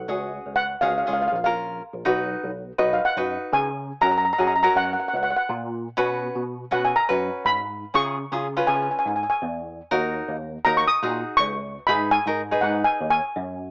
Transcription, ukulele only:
0.08 C#4 F#4 G#4
0.82 C#4 F#4 G#4
1.07 C#4 F4 G#4
1.45 C#4 F4 A#4
2.05 D#4 F#4 B4
2.78 D#4 F#4 B4
3.17 D#4 F#4 B4
4.01 C#4 F#4 A#4
4.38 C#4 F#4 G#4
4.63 C#4 F#4 A#4
5.97 C#4 F#4 B4
6.71 C#4 F#4 B4
7.09 C#4 F#4 B4
7.94 C#4 F4 G#4
8.32 C#4 F4 G#4
8.57 C#4 F4 B4
9.91 D#4 F#4 A#4
10.65 D#4 F#4 A#4
11.03 D#4 F#4 G#4
11.88 D#4 G#4 B4
12.27 D#4 G#4 A#4
12.51 D#4 G#4 B4

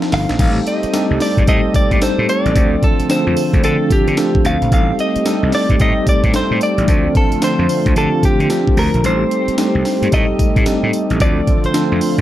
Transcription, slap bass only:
0.13 G1
0.30 A#1
0.39 A1
0.84 muted slap bass stroke
1.11 C2
1.37 G2
1.48 A2
1.74 muted slap bass stroke
1.91 A2
2.18 A2
2.45 A1
2.56 D2
3.00 muted slap bass stroke
3.27 F2
3.53 D2
3.63 D3
3.91 muted slap bass stroke
4.07 D3
4.45 D2
4.62 A#1
4.72 A1
5.16 muted slap bass stroke
5.43 C2
5.70 G2
5.80 A2
6.07 muted slap bass stroke
6.24 A2
6.51 A2
6.78 A1
6.88 D2
7.32 muted slap bass stroke
7.59 F2
7.86 D2
7.96 D3
8.23 muted slap bass stroke
8.40 D3
8.77 D2
8.94 A#1
9.04 A1
9.48 muted slap bass stroke
9.75 C2
10.02 G2
10.13 A2
10.39 muted slap bass stroke
10.56 A2
10.83 A2
11.10 A1
11.21 D2
11.65 muted slap bass stroke
11.92 F2

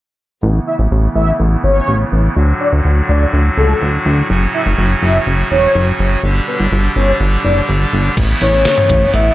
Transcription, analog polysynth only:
0.67 E5
1.15 E5
1.64 C#5
2.60 D5
3.09 D5
3.57 A4
4.54 E5
5.03 E5
5.51 C#5
6.48 B4
6.96 C#5
7.45 D5

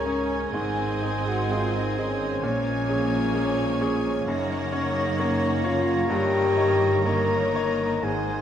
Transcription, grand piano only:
Already playing: G#2 G#3 C#4 G#4
0.05 C#4 G#4
0.54 G#2
1.01 D#4 G#4
1.50 C4 D#4 G#4
1.98 D#4 G#4
2.43 A#2
2.89 C#4 G#4
3.34 A#3 C#4 G#4
3.81 C#4 G#4
4.28 F#2
4.72 C#4 C#5
5.19 A#3 C#4 C#5
5.64 C#4 C#5
6.09 G2
6.57 D#4 C#5
7.05 A#3 D#4 C#5
7.55 D#4 C#5
8.03 G#2

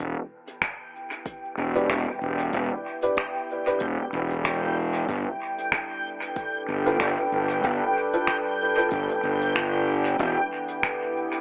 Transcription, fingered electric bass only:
0.00 E1
1.57 E1
1.89 E1
2.21 E1
2.53 E1
3.81 E1
4.13 E1
5.09 G1
6.68 G1
7.00 G1
7.32 G1
7.64 G1
8.92 G1
9.23 G1
10.19 E1

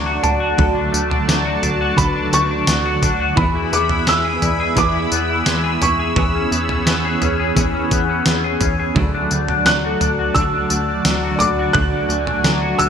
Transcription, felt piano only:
Already playing: A5
0.23 A5
1.97 B5
2.34 C#6
3.37 B5
3.73 D6
4.09 E6
4.78 D6
5.82 C#6
9.66 F#6
10.35 E6
11.39 D6
11.73 F#6
12.79 E6

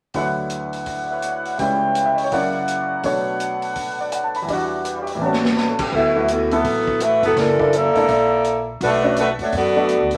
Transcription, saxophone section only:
5.94 F#3 A3 B3 E4
6.31 E3 A3 B3 F#4
6.54 F#3 B3 E4 A4
7.02 A3 E4 F#4 B4
7.25 F#3 B3 E4 A4
7.38 E3 D4 A4 A#4
7.75 A#3 E4 A4 D5
8.82 A3 D4 F#4 B4
9.19 A3 D4 F#4 B4
9.41 A3 D4 F#4 C#5
9.57 B3 F#4 A4 D5

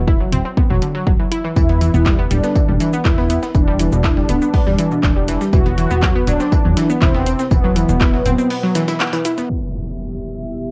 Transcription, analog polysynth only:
1.56 E4
2.31 D4
3.05 E4
3.55 D4
5.53 F#4
6.27 D4
7.02 C4
7.51 B3

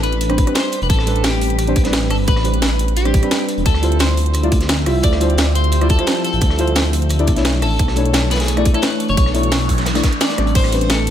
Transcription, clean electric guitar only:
0.03 B4
0.55 C5
0.83 B4
0.89 A4
1.24 G4
2.11 A4
2.28 B4
2.97 G4
3.66 A4
4.00 C5
5.04 D5
5.55 C5
5.90 A4
6.24 A4
7.63 A4
8.31 B4
8.40 G#4
8.75 A4
8.83 B4
9.09 C#5
9.18 C#5
10.21 D5
10.56 C5
10.90 A4

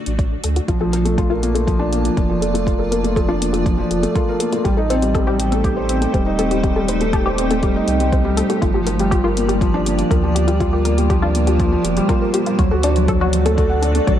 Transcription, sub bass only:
0.07 A1
0.45 D2
0.68 A#1
2.17 F1
3.91 F1
4.65 A1
6.14 D#1
7.88 C2
8.62 G1
10.11 D2
11.84 F1
12.59 D2
14.07 A1

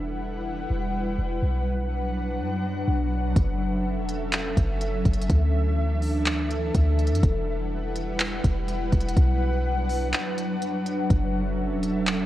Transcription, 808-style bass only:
Already playing: E1
0.70 E1
1.18 E1
1.43 B1
2.39 F#2
2.88 B1
3.36 F#1
3.97 E1
4.57 F#1
5.05 F#1
5.30 D2
6.75 D2
7.11 F#2
7.23 E1
8.44 E1
8.93 E1
9.17 B1
11.10 F#1
11.71 E1

